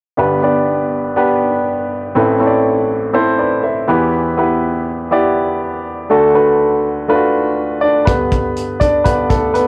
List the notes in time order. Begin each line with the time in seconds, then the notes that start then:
0.18 G1 G2 B3 D4 G4 B4
0.43 B3 D4 G4 D5
1.16 B3 D4 G4 B4
2.15 A1 A2 C4 E4 A4 B4
2.39 C4 E4 A4 C#5
2.46 D5
3.13 C4 E4 A4 C5
3.39 B4 D5
3.63 C5 E5
3.88 E2 E3 B3 E4 G4 B4
4.37 B3 E4 G4 B4
5.11 B3 E4 G4 D5
6.10 D2 D3 A3 D4 F#4 A4
6.34 A3 D4 F#4 B4
7.08 A3 D4 F4 B4
7.15 F#4
7.81 D4 D5
8.05 G2 D3 B3 B4, kick, closed hi-hat
8.32 kick, closed hi-hat
8.56 closed hi-hat
8.80 D4 D5, kick, closed hi-hat
9.04 G2 D3 B3 B4, kick, closed hi-hat
9.30 A3 A4, kick, closed hi-hat
9.54 B3 B4, closed hi-hat